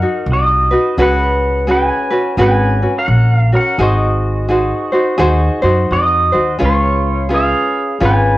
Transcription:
0.00 0.72 D#4 soft
0.00 0.72 F#4 soft
0.00 0.26 A#4 medium
0.00 0.32 F#5 medium
0.26 0.72 C2 medium
0.32 0.96 F#4 medium
0.32 1.02 D#5 medium
0.71 0.98 D#4 soft
0.71 0.98 F#4 soft
0.71 0.98 B4 medium
0.97 1.89 C#2 medium
0.97 1.67 C#4 medium
0.97 1.68 F#4 medium
0.97 1.67 G#4 medium
0.97 1.69 B4 medium
1.02 1.66 B4 medium
1.02 1.71 F#5 loud
1.67 2.11 C#4 medium
1.67 2.11 F#4 medium
1.67 2.11 G#4 medium
1.67 2.09 B4 medium
1.67 2.36 B4 medium
1.71 2.42 G#5 loud
2.11 2.37 C#4 soft
2.11 2.38 F#4 soft
2.11 2.38 B4 soft
2.37 2.83 G#1 loud
2.37 2.82 C#4 medium
2.37 2.81 F#4 medium
2.37 2.82 G#4 medium
2.37 2.82 B4 medium
2.42 2.93 B4 medium
2.42 2.98 G#5 loud
2.82 3.52 C#4 soft
2.82 3.52 F#4 soft
2.98 3.50 A#4 medium
2.98 3.36 F#5 medium
3.08 3.54 A#1 medium
3.36 3.50 F5 medium
3.52 3.79 C#4 soft
3.52 3.78 F#4 soft
3.52 3.78 A#4 medium
3.56 3.82 F#5 medium
3.78 4.70 G#1 medium
3.78 4.48 D#4 medium
3.78 4.49 F#4 medium
3.78 4.48 G#4 medium
3.78 4.49 C5 medium
3.82 5.87 F#4 medium
3.82 5.92 D#5 medium
4.48 4.93 D#4 medium
4.48 4.92 F#4 medium
4.48 4.92 G#4 medium
4.48 4.91 C5 medium
4.92 5.17 D#4 soft
4.92 5.18 F#4 soft
4.92 5.18 C5 soft
5.18 5.47 D#2 medium
5.18 5.62 D#4 medium
5.18 5.62 F#4 medium
5.18 5.62 G#4 medium
5.18 5.61 C5 medium
5.62 5.87 F#2 medium
5.62 6.33 D#4 soft
5.62 6.32 F#4 medium
5.62 6.31 C5 medium
5.91 6.29 F2 medium
5.91 6.57 F#4 medium
5.91 6.63 D#5 medium
6.32 6.58 D#2 medium
6.32 6.59 D#4 soft
6.32 6.59 F#4 soft
6.32 6.59 C5 soft
6.59 7.52 C#2 medium
6.59 7.30 C#4 medium
6.59 7.30 F4 medium
6.59 7.28 G#4 medium
6.59 7.30 B4 medium
6.64 7.28 F4 medium
6.64 7.29 C#5 medium
7.29 8.00 C#4 medium
7.29 8.01 F4 medium
7.29 7.99 G#4 medium
7.29 8.00 B4 medium
7.34 7.98 G#4 medium
7.34 7.99 F5 medium
8.00 8.38 G#1 medium
8.00 8.38 C#4 medium
8.00 8.38 F4 medium
8.00 8.38 G#4 medium
8.00 8.38 B4 medium
8.05 8.38 B4 medium
8.05 8.38 G#5 medium

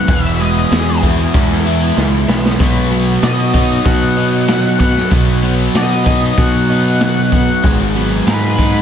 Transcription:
0.00 0.39 B3 medium
0.00 0.10 F#5 medium
0.07 0.64 E1 medium
0.07 1.00 E2 medium
0.07 1.66 E2 medium
0.07 1.01 B2 medium
0.07 1.66 E3 medium
0.07 1.01 E3 loud
0.07 kick loud
0.07 open hi-hat medium
0.11 0.41 E5 medium
0.39 1.34 G#3 medium
0.39 2.29 B3 medium
0.39 1.00 D#5 medium
0.39 open hi-hat medium
0.71 1.27 E2 medium
0.71 1.65 B3 medium
0.71 2.28 G#4 medium
0.71 snare loud
0.71 open hi-hat medium
1.02 2.59 E2 medium
1.02 2.58 B2 medium
1.02 2.58 E3 medium
1.02 1.65 E4 medium
1.02 kick medium
1.02 open hi-hat medium
1.34 1.90 E2 medium
1.34 1.96 E3 medium
1.34 1.96 G#3 medium
1.34 kick loud
1.34 open hi-hat medium
1.52 snare soft
1.65 2.28 B3 medium
1.65 2.60 E4 medium
1.65 open hi-hat medium
1.97 2.25 C#2 medium
1.97 2.60 E3 medium
1.97 2.60 G#3 medium
1.97 snare medium
2.28 2.57 B1 medium
2.28 2.91 B3 medium
2.28 snare medium
2.46 snare medium
2.59 3.16 B1 medium
2.59 3.56 B2 medium
2.59 4.18 B2 medium
2.59 3.55 F#3 loud
2.59 3.53 B3 medium
2.59 kick loud
2.59 open hi-hat medium
2.91 3.85 F#3 medium
2.91 4.79 B3 medium
2.91 open hi-hat medium
3.22 3.79 B2 loud
3.22 4.17 B3 medium
3.22 5.75 F#4 medium
3.22 3.82 D#5 medium
3.22 snare loud
3.22 open hi-hat medium
3.22 tambourine medium
3.53 5.09 B2 medium
3.53 5.12 F#3 medium
3.53 5.13 B3 medium
3.53 4.17 D#4 medium
3.53 kick medium
3.53 open hi-hat medium
3.85 4.98 B2 medium
3.85 4.48 F#3 medium
3.85 4.79 F#5 loud
3.85 kick loud
3.85 open hi-hat medium
4.17 4.79 B3 medium
4.17 6.06 D#4 medium
4.17 open hi-hat medium
4.48 6.38 F#3 medium
4.48 snare loud
4.48 open hi-hat medium
4.48 tambourine loud
4.79 5.44 B3 medium
4.79 5.10 F#5 medium
4.79 kick medium
4.79 open hi-hat medium
4.96 snare soft
5.10 5.68 B1 medium
5.10 6.04 B2 medium
5.10 6.69 B2 medium
5.10 6.05 F#3 medium
5.10 6.04 B3 loud
5.10 kick loud
5.10 open hi-hat medium
5.42 6.36 F#3 medium
5.42 7.33 B3 medium
5.42 open hi-hat medium
5.75 6.31 B2 medium
5.75 6.70 B3 medium
5.75 7.33 F#4 medium
5.75 6.41 D#5 medium
5.75 snare loud
5.75 open hi-hat medium
5.75 tambourine medium
6.04 7.63 B2 medium
6.04 7.62 F#3 medium
6.04 8.82 B3 medium
6.04 6.69 D#4 medium
6.04 kick medium
6.04 open hi-hat medium
6.38 7.50 B2 medium
6.38 7.01 F#3 medium
6.38 7.31 F#5 loud
6.38 kick loud
6.38 open hi-hat medium
6.69 7.32 B3 medium
6.69 7.64 D#4 medium
6.69 open hi-hat medium
7.00 7.64 F#3 medium
7.00 snare loud
7.00 open hi-hat medium
7.00 tambourine medium
7.32 7.95 B3 medium
7.32 7.62 F#5 medium
7.32 kick loud
7.32 open hi-hat medium
7.62 8.20 G#1 medium
7.62 8.56 G#2 medium
7.62 8.82 G#2 medium
7.62 8.57 D#3 medium
7.62 8.57 G#3 loud
7.62 kick loud
7.62 open hi-hat medium
7.95 8.82 F#3 medium
7.95 8.82 B3 medium
7.95 open hi-hat medium
8.26 8.82 G#2 medium
8.26 8.82 B3 medium
8.26 8.82 G#4 medium
8.26 8.82 B4 medium
8.26 snare loud
8.26 open hi-hat medium
8.26 tambourine medium
8.57 8.82 G#2 medium
8.57 8.82 D#3 medium
8.57 8.82 G#3 medium
8.57 8.82 D#4 medium
8.57 kick medium
8.57 open hi-hat medium

